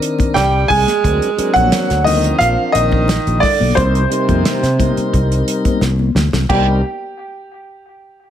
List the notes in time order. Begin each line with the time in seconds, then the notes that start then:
Already playing: D#3 C4 D4 A#4
0.02 closed hi-hat
0.19 kick, closed hi-hat, high conga
0.34 C2 G3 G5, snare, closed hi-hat, low conga
0.68 C2 G#3 G#5, kick, open hi-hat, low conga
0.88 snare, closed hi-hat, high conga
1.04 D2 F#3 C4 D4 A#4, kick, closed hi-hat
1.22 closed hi-hat
1.37 F#3 C4 D4 A#4, muted fretless electric bass stroke, closed hi-hat
1.54 A#1 F#3 F#5, kick, closed hi-hat, high conga
1.72 snare, closed hi-hat
1.90 D2, snare, closed hi-hat
2.04 D#3 F3 C4 D4 A#4 D#5, open hi-hat, high conga, low conga
2.24 closed hi-hat
2.39 A#1 F3 F5, closed hi-hat
2.72 A#1 D#3 D#5, closed hi-hat
2.92 kick, high conga
3.08 snare, closed hi-hat, low conga
3.27 A#1, closed hi-hat
3.40 D3 D5, kick, snare, open hi-hat, low conga
3.60 B1, high conga
3.75 C2 C3 G3 C4 D#4 A#4 C5, kick, closed hi-hat
3.95 closed hi-hat
4.10 G3 C4 D#4 A#4, closed hi-hat
4.29 F2, kick, closed hi-hat, high conga
4.45 snare, closed hi-hat
4.63 C3, snare, closed hi-hat
4.79 G3 C4 D#4 A#4, kick, closed hi-hat, high conga, low conga
4.97 muted fretless electric bass stroke, closed hi-hat
5.14 C2, kick, closed hi-hat, low conga
5.32 closed hi-hat
5.48 closed hi-hat
5.65 kick, closed hi-hat, high conga
5.81 C2, snare, low conga
5.99 high conga
6.15 D2, snare, low conga
6.33 C2, snare, low conga
6.49 C2 G3 C4 D#4 G4 A#4, kick, crash, high conga